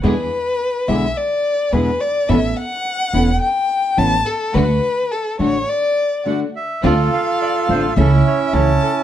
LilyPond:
<<
  \new Staff \with { instrumentName = "Violin" } { \time 4/4 \key d \major \tempo 4 = 106 b'4. e''8 d''4 b'8 d''8 | e''8 fis''4. g''4 a''8 a'8 | b'4 a'8 cis''8 d''4 r4 | \key d \minor f''2 e''4 a''4 | }
  \new Staff \with { instrumentName = "Bandoneon" } { \time 4/4 \key d \major << { r1 | r1 | r2. fis''8 e''8 | \key d \minor d''8 f''8 d''8 c''8 a'8 cis''8 cis''8 a'8 | } \\ { r1 | r1 | r1 | <f' a'>2 <cis' e'>2 | } >> }
  \new Staff \with { instrumentName = "String section" } { \time 4/4 \key d \major <d' e' gis'>8 r4 <d' e' gis'>8 r4 <d' e' gis'>8 r8 | <b cis' a'>8 r4 <b cis' a'>8 r4 <b cis' a'>8 r8 | <a d' fis'>8 r4 <a d' fis'>8 r4 <a d' fis'>8 r8 | \key d \minor <c' d' f'>8 r4 <c' d' f'>8 <a cis' e'>8 r8 <a cis' e'>8 r8 | }
  \new Staff \with { instrumentName = "Nylon-string guitar" } { \time 4/4 \key d \major <b, d gis b e'>8 r4 <b, d gis b e'>8 r4 <b, d gis b e'>8 r8 | <e b cis' e'>8 r4 <e b cis' e'>8 r4 <e b cis' e'>8 r8 | <d a d' fis'>8 r4 <d a d' fis'>8 r4 <d a d' fis'>8 r8 | \key d \minor <d a c' f'>8 r4 <d a c' f'>8 <cis e a cis' e'>8 r8 <cis e a cis' e'>8 r8 | }
  \new Staff \with { instrumentName = "Upright bass" } { \clef bass \time 4/4 \key d \major e,8 r4 b,,8 r4 e,8 r8 | a,,8 r4 e,,8 r4 a,,8 r8 | d,8 r4 a,,8 r2 | \key d \minor d,8 r4 a,,8 cis,8 r8 cis,8 r8 | }
>>